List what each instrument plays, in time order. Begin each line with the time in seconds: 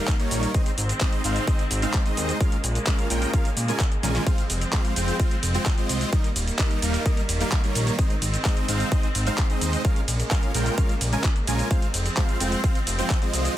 Already playing: string section D#3 G3 A#3, supersaw synth G3 A#3 D#4 A#4 F5
0.08 kick, clap, closed hi-hat, shaker
0.20 supersaw synth G3 A#3 D#4 A#4 C#5, closed hi-hat, shaker
0.31 analog synth bass A#1, open hi-hat, shaker
0.43 closed hi-hat, shaker
0.54 string section D#3 G#3 C4, supersaw synth G#3 C4 D#4 C5 D#5, kick, closed hi-hat, shaker
0.66 closed hi-hat, shaker
0.78 analog synth bass G#1, open hi-hat, shaker
0.89 closed hi-hat, shaker
1.01 supersaw synth G#3 C4 D#4 C5 D#5, kick, clap, closed hi-hat, shaker
1.13 closed hi-hat, shaker
1.24 analog synth bass G#1, supersaw synth G#3 C4 D#4 C5 F5, open hi-hat, shaker
1.36 closed hi-hat, shaker
1.47 supersaw synth G#3 C4 D#4 C5 D#5, kick, closed hi-hat, shaker
1.59 closed hi-hat, shaker
1.71 analog synth bass G#1, open hi-hat, shaker
1.82 supersaw synth G#3 C4 D#4 C5 F5, closed hi-hat, shaker
1.94 kick, clap, closed hi-hat, shaker
2.06 supersaw synth G#3 C4 D#4 C5 D#5, closed hi-hat, shaker
2.17 analog synth bass D#2, open hi-hat, shaker
2.29 closed hi-hat, shaker
2.40 string section C#3 A#3, supersaw synth G#3 C#4 F4 A#4 F5, kick, closed hi-hat, shaker
2.52 closed hi-hat, shaker
2.64 analog synth bass A#1, open hi-hat, shaker
2.75 closed hi-hat, shaker
2.87 supersaw synth G#3 C#4 F4 A#4 F5, kick, clap, closed hi-hat, shaker
2.99 closed hi-hat, shaker
3.10 analog synth bass A#1, supersaw synth G#3 C#4 F4 A#4 G5, open hi-hat, shaker
3.22 closed hi-hat, shaker
3.34 supersaw synth G#3 C#4 F4 A#4 F5, kick, closed hi-hat, shaker
3.45 closed hi-hat, shaker
3.57 analog synth bass A#2, open hi-hat, shaker
3.68 supersaw synth G#3 C#4 F4 A#4 G#5, closed hi-hat, shaker
3.80 kick, clap, closed hi-hat, shaker
3.92 closed hi-hat, shaker
4.03 analog synth bass A#1, supersaw synth G#3 C#4 F4 A#4 G#5, snare, open hi-hat, shaker
4.15 snare, closed hi-hat, shaker
4.27 string section F3 C4, supersaw synth G#3 C4 F4 C5 F5, kick, closed hi-hat, ride, shaker
4.38 closed hi-hat, shaker
4.50 analog synth bass F1, open hi-hat, ride, shaker
4.61 closed hi-hat, shaker
4.73 supersaw synth G#3 C4 F4 C5 F5, kick, clap, closed hi-hat, shaker
4.85 closed hi-hat, shaker
4.96 analog synth bass F1, supersaw synth G#3 C4 F4 C5 G5, open hi-hat, ride, shaker
5.08 closed hi-hat, shaker
5.20 supersaw synth G#3 C4 F4 C5 F5, kick, closed hi-hat, ride, shaker
5.31 closed hi-hat, shaker
5.43 analog synth bass F1, open hi-hat, ride, shaker
5.54 supersaw synth G#3 C4 F4 C5 G5, closed hi-hat, shaker
5.66 kick, clap, closed hi-hat, ride, shaker
5.78 supersaw synth G#3 C4 F4 C5 D#5, closed hi-hat, shaker
5.89 analog synth bass C2, open hi-hat, ride, shaker
6.01 closed hi-hat, shaker
6.13 string section D#3 G3 A#3, supersaw synth G3 A#3 D#4 A#4 D#5, kick, closed hi-hat, ride, shaker
6.24 closed hi-hat, shaker
6.36 analog synth bass D#1, open hi-hat, ride, shaker
6.48 closed hi-hat, shaker
6.59 supersaw synth G3 A#3 D#4 A#4 D#5, kick, clap, closed hi-hat, shaker
6.71 closed hi-hat, shaker
6.82 analog synth bass D#1, supersaw synth G3 A#3 D#4 A#4 F5, open hi-hat, ride, shaker
6.94 closed hi-hat, shaker
7.06 supersaw synth G3 A#3 D#4 A#4 D#5, kick, closed hi-hat, ride, shaker
7.17 closed hi-hat, shaker
7.29 analog synth bass D#1, open hi-hat, ride, shaker
7.41 supersaw synth G3 A#3 D#4 A#4 F5, closed hi-hat, shaker
7.52 kick, clap, closed hi-hat, shaker
7.64 supersaw synth G3 A#3 D#4 A#4 C#5, closed hi-hat, shaker
7.75 analog synth bass A#1, open hi-hat, ride, shaker
7.87 closed hi-hat, shaker
7.99 supersaw synth G#3 C4 D#4 C5 D#5, string section G#3 C4, kick, closed hi-hat, ride, shaker
8.10 closed hi-hat, shaker
8.22 analog synth bass G#1, open hi-hat, ride, shaker
8.34 closed hi-hat, shaker
8.45 supersaw synth G#3 C4 D#4 C5 D#5, kick, clap, closed hi-hat, ride, shaker
8.57 closed hi-hat, shaker
8.68 analog synth bass G#1, supersaw synth G#3 C4 D#4 C5 F5, open hi-hat, ride, shaker
8.80 closed hi-hat, shaker
8.92 supersaw synth G#3 C4 D#4 C5 D#5, kick, closed hi-hat, ride, shaker
9.03 closed hi-hat, shaker
9.15 analog synth bass G#1, open hi-hat, ride, shaker
9.27 supersaw synth G#3 C4 D#4 C5 F5, closed hi-hat, shaker
9.38 kick, clap, closed hi-hat, shaker
9.50 supersaw synth G#3 C4 D#4 C5 D#5, closed hi-hat, shaker
9.61 analog synth bass D#2, open hi-hat, ride, shaker
9.73 closed hi-hat, shaker
9.85 string section C#3 A#3, supersaw synth G#3 C#4 F4 A#4, kick, closed hi-hat, ride, shaker
9.96 closed hi-hat, shaker
10.08 analog synth bass A#1, open hi-hat, ride, shaker
10.20 closed hi-hat, shaker
10.31 supersaw synth G#3 C#4 F4 A#4 F5, kick, clap, closed hi-hat, shaker
10.43 closed hi-hat, shaker
10.54 analog synth bass A#1, supersaw synth G#3 C#4 F4 A#4 G5, open hi-hat, ride, shaker
10.66 closed hi-hat, shaker
10.78 supersaw synth G#3 C#4 F4 A#4 F5, kick, closed hi-hat, ride, shaker
10.89 closed hi-hat, shaker
11.01 analog synth bass A#1, open hi-hat, ride, shaker
11.13 supersaw synth G#3 C#4 F4 A#4 G#5, closed hi-hat, shaker
11.24 kick, clap, closed hi-hat, shaker
11.36 closed hi-hat, shaker
11.47 analog synth bass A#1, supersaw synth G#3 C#4 F4 A#4 G#5, open hi-hat, ride, shaker
11.59 closed hi-hat, shaker
11.71 string section F3 C4, supersaw synth C4 F4 C5 F5, kick, closed hi-hat, ride, shaker
11.82 closed hi-hat, shaker
11.94 analog synth bass F1, open hi-hat, ride, shaker
12.06 closed hi-hat, shaker
12.17 supersaw synth G#3 C4 F4 C5 F5, kick, clap, closed hi-hat, shaker
12.29 closed hi-hat, shaker
12.40 analog synth bass F1, supersaw synth G#3 C4 F4 C5 G5, open hi-hat, ride, shaker
12.52 closed hi-hat, shaker
12.64 supersaw synth G#3 C4 F4 C5 F5, kick, closed hi-hat, ride, shaker
12.75 closed hi-hat, shaker
12.87 analog synth bass F1, open hi-hat, ride, shaker
12.99 supersaw synth G#3 C4 F4 C5 G5, closed hi-hat, shaker
13.10 kick, clap, closed hi-hat, shaker
13.22 supersaw synth G#3 C4 F4 C5 D#5, closed hi-hat, shaker
13.33 analog synth bass C2, open hi-hat, ride, shaker
13.45 closed hi-hat, shaker